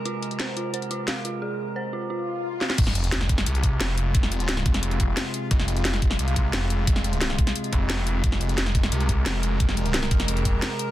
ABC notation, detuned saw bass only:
X:1
M:4/4
L:1/8
Q:1/4=176
K:Fm
V:1 name="Detuned saw bass" clef=bass
z8 | z8 | F,,,2 F,,,2 C,,2 F,,,2- | F,,,3 F,,,3 z2 |
F,,,2 F,,,2 C,,2 F,,,2- | F,,,3 z2 F,,,3 | F,,,2 F,,,2 C,,2 F,,,2- | F,,,3 F,,,3 z2 |]